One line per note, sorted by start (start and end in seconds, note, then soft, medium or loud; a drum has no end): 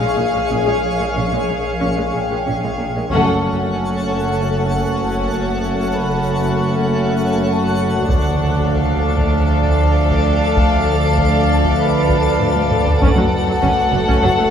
0.00 3.11 A#1 medium
0.00 0.08 A#2 soft
0.00 0.08 G#3 soft
0.00 2.91 G#4 medium
0.00 3.12 G#4 soft
0.00 3.08 C#5 medium
0.00 2.87 F5 medium
0.00 3.12 F5 soft
0.00 1.77 G#5 soft
0.17 0.24 A#1 soft
0.17 0.24 A#2 soft
0.17 0.24 A#3 soft
0.34 0.41 A#2 soft
0.34 0.40 G#3 soft
0.50 0.57 A#1 soft
0.50 0.57 A#2 soft
0.50 0.57 C#4 soft
0.50 0.73 C#4 soft
0.50 0.74 G#4 soft
0.66 0.73 A#2 soft
0.66 0.72 G#3 soft
0.99 1.06 A#2 soft
0.99 1.06 G#3 soft
1.16 1.23 A#1 soft
1.16 1.23 A#2 soft
1.16 1.23 C#4 soft
1.31 1.39 A#2 soft
1.31 1.38 G#3 soft
1.47 1.55 A#1 soft
1.47 1.56 A#2 soft
1.47 1.54 A#3 soft
1.80 1.88 A#1 soft
1.80 1.88 A#2 soft
1.80 1.87 C#4 soft
1.80 2.04 C#4 soft
1.80 2.05 G#4 soft
1.97 2.05 A#2 soft
1.97 2.03 G#3 soft
2.13 2.21 A#1 soft
2.13 2.21 A#2 soft
2.13 2.20 A#3 soft
2.13 3.08 G5 soft
2.30 2.38 A#2 soft
2.30 2.37 G#3 soft
2.46 2.53 A#1 soft
2.46 2.54 A#2 soft
2.46 2.52 C#4 soft
2.63 2.70 A#2 soft
2.63 2.70 G#3 soft
2.78 2.86 A#1 soft
2.78 2.86 A#2 soft
2.78 2.85 A#3 soft
2.95 3.02 A#2 soft
2.95 3.01 G#3 soft
3.10 8.06 F#1 medium
3.10 8.06 F#2 medium
3.10 8.05 A3 medium
3.10 8.05 C#4 soft
3.10 8.05 F#4 medium
3.10 8.06 A4 medium
3.10 8.06 A4 soft
3.10 8.06 C#5 medium
3.10 8.05 F#5 medium
3.10 8.68 F#5 medium
3.10 taiko medium
3.74 5.57 G#5 soft
5.94 7.76 B5 soft
8.08 13.01 D2 medium
8.08 12.97 D2 soft
8.08 12.84 F3 medium
8.08 12.84 A3 medium
8.08 12.97 D4 soft
8.08 12.97 A4 soft
8.08 12.98 A4 soft
8.08 13.01 D5 soft
8.08 13.01 A5 soft
8.08 taiko medium
8.71 13.02 F5 medium
8.71 taiko medium
9.18 taiko medium
9.63 taiko medium
10.11 taiko medium
10.57 taiko medium
11.18 taiko medium
11.63 taiko medium
11.80 13.59 B4 soft
11.80 13.59 B5 soft
12.09 taiko medium
12.40 taiko low-mid medium
12.55 taiko high medium
12.71 taiko low-mid medium
12.87 taiko low medium
13.01 13.08 F#1 medium
13.01 14.50 F#1 medium
13.01 13.07 F#2 medium
13.01 13.89 F#2 medium
13.01 14.50 A3 medium
13.01 13.08 C#4 medium
13.01 14.50 F#4 medium
13.01 14.50 A4 medium
13.01 14.50 C#5 soft
13.01 14.50 F#5 medium
13.01 taiko medium
13.16 13.22 F#2 medium
13.16 13.24 F#3 soft
13.47 13.53 F#2 medium
13.47 13.53 F#3 soft
13.62 13.69 F#1 medium
13.62 13.68 F#2 medium
13.62 13.68 C#4 medium
13.62 taiko medium
13.92 13.99 F#1 medium
13.92 13.99 F#2 medium
13.92 13.98 A3 soft
14.08 14.14 F#2 medium
14.08 14.14 C#4 medium
14.08 taiko medium
14.23 14.30 F#1 medium
14.23 14.30 F#2 soft
14.23 14.29 F#3 soft
14.38 14.45 F#2 medium
14.38 14.45 A3 medium